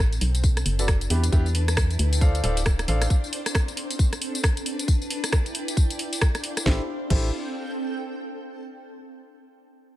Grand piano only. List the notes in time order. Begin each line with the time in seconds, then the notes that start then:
0.79 F#4 A4 B4 D5
1.10 B3 D4 E4 G4
1.33 B3 D4 E4 G4
2.21 A4 C5 D5 F5
2.44 A4 C5 D5 F5
2.88 A4 C5 D5 F5
6.66 E4 G4 A4 C5
7.10 E4 G4 A4 C5